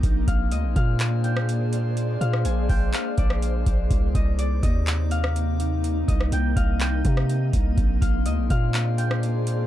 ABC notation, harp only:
X:1
M:4/4
L:1/8
Q:1/4=124
K:Bbmix
V:1 name="Harp"
z f e f2 g3 | z f a g f d3 | z e d e2 f3 | z e g f g2 z2 |
z f e f2 g3 |]